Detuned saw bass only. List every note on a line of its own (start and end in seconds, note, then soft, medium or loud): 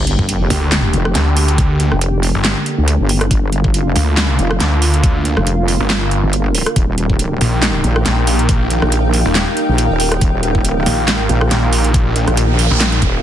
0.50 0.92 D2 loud
1.15 1.78 D2 loud
1.80 1.90 D2 medium
2.35 2.54 G1 loud
3.96 4.37 D2 loud
4.60 5.24 D2 medium
5.25 5.35 D2 loud
5.80 6.21 G1 loud
7.41 7.82 A#1 loud
8.06 8.69 A#1 loud
8.70 8.80 A#1 medium
9.25 9.45 D#1 loud
10.86 11.28 A#1 medium
11.51 12.14 A#1 loud
12.16 12.26 A#1 medium
12.71 13.00 A#1 loud